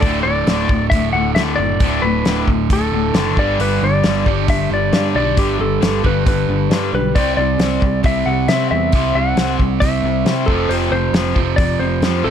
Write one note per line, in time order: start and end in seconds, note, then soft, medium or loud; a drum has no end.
0.01 0.23 D1 medium
0.01 0.23 D2 medium
0.01 0.24 A2 medium
0.01 0.24 D3 medium
0.01 0.22 D5 medium
0.01 kick loud
0.01 open hi-hat soft
0.23 0.44 D1 medium
0.23 0.45 D2 medium
0.23 0.45 A2 medium
0.23 0.89 D5 medium
0.46 0.67 D1 medium
0.46 0.68 D2 medium
0.46 0.68 A2 medium
0.46 0.69 D3 loud
0.46 snare medium
0.46 open hi-hat soft
0.69 0.90 D1 medium
0.69 0.89 D2 medium
0.69 0.90 A2 medium
0.69 kick medium
0.90 1.12 D1 medium
0.90 1.13 D2 medium
0.90 1.13 A2 medium
0.90 1.12 E5 medium
0.90 kick loud
0.90 open hi-hat medium
0.95 1.82 D3 medium
1.12 1.33 D1 medium
1.12 1.34 D2 medium
1.12 1.35 A2 medium
1.12 1.34 F#5 medium
1.35 1.56 D2 medium
1.35 1.57 D2 medium
1.35 1.58 A2 medium
1.35 1.58 D3 medium
1.35 1.41 E5 medium
1.35 snare loud
1.35 open hi-hat soft
1.56 1.79 F#1 medium
1.56 1.79 D2 medium
1.56 1.79 A2 medium
1.56 2.03 D5 medium
1.80 2.01 D1 medium
1.80 2.02 D2 medium
1.80 2.03 A2 medium
1.80 2.03 D3 loud
1.80 kick loud
1.80 open hi-hat medium
2.02 2.23 D1 medium
2.02 2.24 D2 medium
2.02 2.24 A2 medium
2.02 2.44 B4 medium
2.25 2.46 D1 medium
2.25 2.47 D2 medium
2.25 2.47 A2 medium
2.25 2.48 D3 medium
2.25 snare medium
2.25 open hi-hat soft
2.48 2.68 D1 medium
2.48 2.69 D2 medium
2.48 2.69 A2 medium
2.48 kick medium
2.70 2.91 D1 medium
2.70 2.91 D2 medium
2.70 2.91 A2 medium
2.70 3.38 D3 medium
2.70 3.40 A4 medium
2.70 kick loud
2.70 open hi-hat medium
2.92 3.12 D1 medium
2.92 3.13 D2 medium
2.92 3.13 A2 medium
3.14 3.35 F#1 medium
3.14 3.35 D2 medium
3.14 3.36 A2 medium
3.14 3.36 D3 medium
3.14 snare loud
3.14 open hi-hat soft
3.37 3.57 G1 medium
3.37 3.58 G2 medium
3.37 3.58 D3 medium
3.37 3.59 G3 loud
3.37 3.59 D5 medium
3.37 kick medium
3.59 3.79 G1 loud
3.59 3.80 G2 medium
3.59 3.80 D3 medium
3.59 3.81 G3 medium
3.59 3.83 B4 medium
3.59 open hi-hat medium
3.81 4.02 G1 medium
3.81 4.02 G2 medium
3.81 4.02 D3 medium
3.81 4.49 D5 medium
4.03 4.24 G1 medium
4.03 4.24 G2 medium
4.03 4.25 D3 medium
4.03 4.25 G3 medium
4.03 snare loud
4.03 open hi-hat soft
4.26 4.46 G1 medium
4.26 4.46 G2 medium
4.26 4.46 D3 medium
4.26 5.18 G3 medium
4.26 kick medium
4.48 4.69 G1 medium
4.48 4.68 G2 medium
4.48 4.69 D3 medium
4.48 4.72 E5 medium
4.48 kick loud
4.48 open hi-hat medium
4.70 4.90 G1 medium
4.70 4.90 G2 medium
4.70 4.91 D3 medium
4.70 5.15 D5 medium
4.93 5.14 G2 medium
4.93 5.13 G2 medium
4.93 5.14 D3 medium
4.93 5.14 G3 medium
4.93 snare medium
4.93 open hi-hat soft
5.15 5.35 B1 medium
5.15 5.36 G2 medium
5.15 5.36 D3 medium
5.15 6.03 G3 medium
5.15 5.38 D5 medium
5.37 5.58 G1 medium
5.37 5.58 G2 medium
5.37 5.58 D3 medium
5.37 5.59 G3 medium
5.37 5.59 G4 medium
5.37 kick loud
5.37 open hi-hat medium
5.59 5.80 G1 medium
5.59 5.80 G2 medium
5.59 5.80 D3 medium
5.59 6.06 A4 medium
5.81 6.02 G1 medium
5.81 6.02 G2 medium
5.81 6.02 D3 medium
5.81 6.03 G3 medium
5.81 snare loud
5.81 open hi-hat soft
6.04 6.24 G1 medium
6.04 6.24 G2 medium
6.04 6.24 D3 medium
6.04 7.19 G3 medium
6.04 6.27 B4 medium
6.04 kick medium
6.08 6.93 G2 medium
6.26 6.46 G1 medium
6.26 6.46 G2 medium
6.26 6.47 D3 medium
6.26 6.94 B4 medium
6.26 kick loud
6.26 open hi-hat soft
6.48 6.68 G1 medium
6.48 6.69 G2 medium
6.48 6.69 D3 medium
6.70 6.90 G2 medium
6.70 6.92 G2 medium
6.70 6.92 D3 medium
6.70 6.93 G3 medium
6.70 snare loud
6.70 open hi-hat soft
6.93 7.13 B1 medium
6.93 7.13 G2 medium
6.93 7.13 D3 medium
6.93 7.17 B4 medium
7.15 7.36 C2 loud
7.15 7.36 C3 medium
7.15 7.36 G3 medium
7.15 7.36 C4 medium
7.15 7.36 D5 medium
7.15 kick loud
7.15 open hi-hat medium
7.37 7.57 C2 medium
7.37 7.58 C3 medium
7.37 7.58 G3 medium
7.37 8.00 D5 medium
7.58 7.79 C2 medium
7.58 7.80 C3 medium
7.58 7.81 G3 medium
7.58 7.81 C4 medium
7.58 snare loud
7.58 open hi-hat soft
7.82 8.02 C2 medium
7.82 8.02 C3 medium
7.82 8.02 G3 medium
7.82 kick medium
8.03 8.24 C2 medium
8.03 8.23 C3 medium
8.03 8.24 G3 medium
8.03 8.28 E5 medium
8.03 kick loud
8.03 open hi-hat soft
8.08 8.96 C4 medium
8.26 8.46 C2 medium
8.26 8.47 C3 medium
8.26 8.47 G3 medium
8.26 8.47 F#5 medium
8.48 8.68 C3 medium
8.48 8.70 C3 medium
8.48 8.70 G3 medium
8.48 8.70 C4 medium
8.48 8.70 E5 medium
8.48 snare medium
8.48 open hi-hat soft
8.71 8.91 E2 medium
8.71 8.91 C3 medium
8.71 8.91 G3 medium
8.71 9.16 E5 loud
8.92 9.13 C2 medium
8.92 9.14 C3 medium
8.92 9.15 G3 medium
8.92 9.15 C4 medium
8.92 kick loud
8.92 open hi-hat medium
9.14 9.35 C2 medium
9.14 9.36 C3 medium
9.14 9.36 G3 medium
9.14 9.56 F#5 medium
9.36 9.56 C2 medium
9.36 9.58 C3 medium
9.36 9.58 G3 medium
9.36 9.59 C4 medium
9.36 snare loud
9.36 open hi-hat soft
9.59 9.79 C2 medium
9.59 9.80 C3 medium
9.59 9.80 G3 medium
9.59 kick medium
9.80 10.02 C2 medium
9.80 10.02 C3 medium
9.80 10.02 G3 medium
9.80 10.49 E5 loud
9.80 kick loud
9.80 open hi-hat medium
9.85 10.50 C4 medium
10.03 10.23 C2 medium
10.03 10.24 C3 medium
10.03 10.24 G3 medium
10.25 10.45 C3 medium
10.25 10.47 C3 medium
10.25 10.47 G3 medium
10.25 10.48 C4 medium
10.25 snare medium
10.25 open hi-hat soft
10.46 10.68 F1 medium
10.46 10.69 F2 medium
10.46 10.69 C3 medium
10.46 10.70 F3 medium
10.46 10.70 A4 medium
10.46 kick medium
10.69 10.89 F1 medium
10.69 10.91 F2 medium
10.69 10.91 C3 medium
10.69 10.91 F3 medium
10.69 10.75 C5 medium
10.69 open hi-hat medium
10.91 11.11 F1 medium
10.91 11.12 F2 medium
10.91 11.12 C3 medium
10.91 11.60 C5 medium
11.13 11.33 F1 medium
11.13 11.35 F2 medium
11.13 11.35 C3 medium
11.13 11.36 F3 medium
11.13 snare loud
11.13 open hi-hat soft
11.35 11.56 F1 medium
11.35 11.56 F2 medium
11.35 11.56 C3 medium
11.35 12.23 F3 medium
11.35 kick medium
11.56 11.78 F1 medium
11.56 11.78 F2 medium
11.56 11.79 C3 medium
11.56 11.80 D5 loud
11.56 kick loud
11.56 open hi-hat soft
11.79 12.00 F1 medium
11.79 12.01 F2 medium
11.79 12.01 C3 medium
11.79 12.26 C5 medium
12.01 12.22 F2 medium
12.01 12.23 F2 medium
12.01 12.24 C3 medium
12.01 12.24 F3 loud
12.01 snare loud
12.01 open hi-hat soft
12.24 12.30 A1 medium
12.24 12.30 F2 medium
12.24 12.30 C3 medium
12.24 12.30 A4 medium